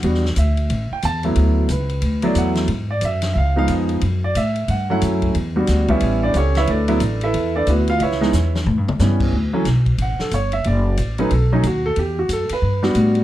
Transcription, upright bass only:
X:1
M:4/4
L:1/8
Q:"Swing" 1/4=181
K:D
V:1 name="Upright bass" clef=bass
E,,2 D,,2 A,,, z E,,2 | D,,2 C,,2 D,,2 E,,2 | ^G,,2 F,,2 C,,2 ^E,,2 | F,,2 A,,2 G,,2 F,,2 |
E,,2 D,,2 A,,,2 C,,2 | D,,2 A,,,2 E,,2 D,,2 | C,,2 E,,2 (3A,, G,, E,, G,,2 | D,,2 B,,,2 A,,, z G,,,2 |
F,,,2 A,,,2 B,,,2 ^D,,2 | E,,2 F,, z G,,2 A,,2 |]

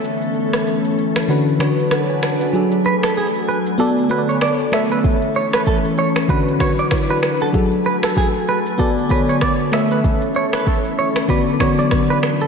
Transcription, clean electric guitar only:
X:1
M:4/4
L:1/16
Q:"Swing 16ths" 1/4=96
K:A
V:1 name="Clean electric guitar"
z16 | z2 B A G z B z A z B c d z e B | z2 c B A z c z B z c d z B z A | z2 B A G z B z A z B c d z e B |
z2 c B A z c z B z c d z B z A |]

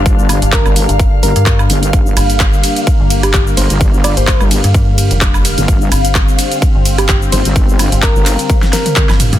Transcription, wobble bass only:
X:1
M:4/4
L:1/16
Q:"Swing 16ths" 1/4=128
K:Gm
V:1 name="Wobble bass" clef=bass
G,,,3 z2 G,,,2 z3 G,,, z3 G,,,2 | G,,,2 z12 G,,, G,,,- | G,,,3 z2 G,,,2 z8 G,,, | G,,,2 z12 G,,, G,,,- |
G,,,3 z2 G,,,2 z8 z |]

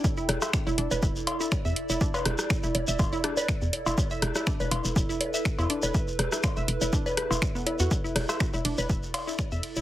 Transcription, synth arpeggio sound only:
X:1
M:4/4
L:1/16
Q:"Swing 16ths" 1/4=122
K:Clyd
V:1 name="Synth arpeggio sound"
z E z e z E D B z3 E z e z E | D B z3 E z e z E D B z3 E | z e z E D B z3 E z e z E D B | z3 E z e z E D B B E z B, E F |
z E z e z E D B z3 E z e z E |]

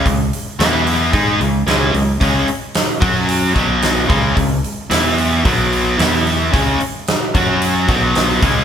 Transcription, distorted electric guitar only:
X:1
M:4/4
L:1/8
Q:1/4=111
K:Cblyd
V:1 name="Distorted electric guitar" clef=bass
[D,A,] z [=E,=B,=E]2 [A,_EA] [D,A,] [D,A,D] [D,A,] | [D,A,D] z2 [G,DG]2 [C,G,C]2 [D,A,D] | [D,A,] z [=E,=B,=E]2 [C,G,C]2 [E,B,E]2 | [D,A,D] z2 [G,DG]2 [C,G,C]2 [D,A,D] |]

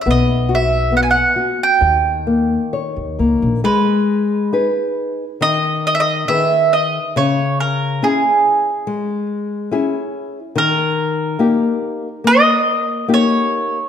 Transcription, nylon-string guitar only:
X:1
M:4/4
L:1/8
Q:1/4=69
K:D#phr
V:1 name="Nylon-string guitar"
B, F B, F D, A, c A, | [K:G#m] G,2 [DGB]2 D,2 [D,GB]2 | C,2 [CEG]2 G,2 [CEG]2 | D,2 [A,D=G]2 A,2 [A,DG]2 |]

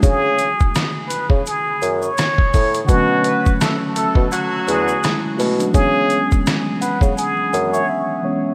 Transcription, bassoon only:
X:1
M:4/4
L:1/16
Q:"Swing 16ths" 1/4=84
K:C#phr
V:1 name="Bassoon" clef=bass
C,3 z4 C, z2 F,,2 z2 A,,2 | B,,3 z4 B,, z2 E,,2 z2 B,,2 | C,3 z4 C, z2 F,,2 z4 |]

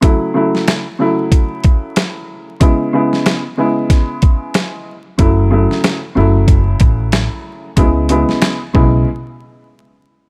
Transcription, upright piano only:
X:1
M:4/4
L:1/8
Q:"Swing 16ths" 1/4=93
K:F#m
V:1 name="Upright piano" clef=bass
[C,F,A,E] [C,F,A,E] z [C,F,A,E]4- [C,F,A,E] | [C,G,B,E] [C,G,B,E] z [C,G,B,E]4 z | [C,F,A,E] [C,F,A,E] z [C,F,A,E]4- [C,F,A,E] | [C,G,B,E] [C,G,B,E] z [C,G,B,E] z4 |]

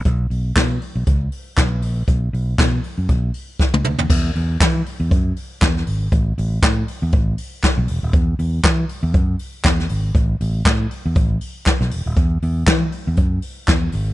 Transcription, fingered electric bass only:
X:1
M:4/4
L:1/16
Q:"Swing 16ths" 1/4=119
K:Alyd
V:1 name="Fingered electric bass" clef=bass
B,,,2 B,,,2 B,,2 z B,,, C,,2 z2 B,,,2 ^A,,,2 | B,,,2 B,,,2 B,,2 z F,, B,,,2 z3 C,, =D,, ^D,, | E,,2 E,,2 E,2 z E,, F,,2 z2 E,,2 G,,,2 | A,,,2 A,,,2 A,,2 z E,, A,,,2 z3 B,,, E,,, D,,, |
E,,2 E,,2 E,2 z E,, F,,2 z2 E,,2 G,,,2 | A,,,2 A,,,2 A,,2 z E,, A,,,2 z3 B,,, E,,, D,,, | E,,2 E,,2 E,2 z E,, F,,2 z2 E,,2 G,,,2 |]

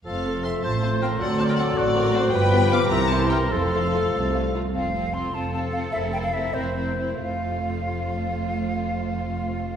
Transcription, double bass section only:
X:1
M:6/8
L:1/8
Q:3/8=99
K:F
V:1 name="Double bass section" clef=bass
F,,,3 A,,,3 | D,,3 A,,,3 | G,,,3 C,,3 | F,,,3 C,,3 |
F,,,3 F,,,3 | F,,,3 F,,,3 | F,,,6- | F,,,6 |]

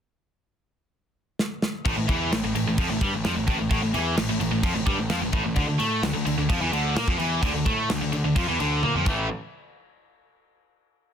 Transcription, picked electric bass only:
X:1
M:4/4
L:1/16
Q:1/4=129
K:Dm
V:1 name="Picked electric bass" clef=bass
z16 | A,,, A,,, E,,2 A,,, A,,, A,,, A,,, F,, A,,, G,, A,,, F,, A,,, A,,, A,,, | A,,, A,,, E,,2 A,,, A,,, A,,, A,,, F,, A,,, G,, A,,, F,, A,,, A,,, A,,, | D,, D,, A,,2 D,, D,, D,, D,, F,, E,, D,,2 B,, F,, E,,2 |
D,, D,, A,,2 D,, D,, D,, D,, F,, E,, D,,2 B,, F,, A,,,2 | z16 |]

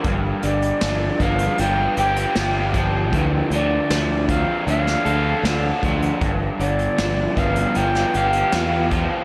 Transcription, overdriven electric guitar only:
X:1
M:4/4
L:1/8
Q:1/4=78
K:Gmix
V:1 name="Overdriven electric guitar" clef=bass
G,, D, F, B, F G F F, | D, F, F, C D A D F, | G,, D, F, B, F G F F, |]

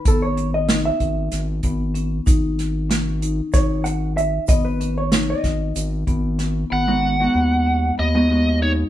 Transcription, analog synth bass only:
X:1
M:7/8
L:1/8
Q:1/4=95
K:G#m
V:1 name="Analog synth bass" clef=bass
G,,,3 G,,, G,,, G,,,2 | G,,,4 G,,,3 | G,,,3 G,,, G,,, G,,,2 | G,,,2 D,,2 D,,3 |]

